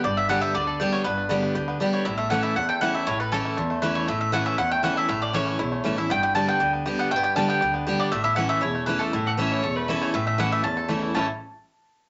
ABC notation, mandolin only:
X:1
M:4/4
L:1/8
Q:1/4=238
K:Amix
V:1 name="Mandolin"
d e f e d3 c | B6 z c | e e f e f g f e | c B A4 B c |
e e f e f g f e | e d c4- c e | g g a g2 z2 f | g g a g2 z2 d |
e e f e c2 B A- | A6 z c | e e f e a3 z | a z6 z |]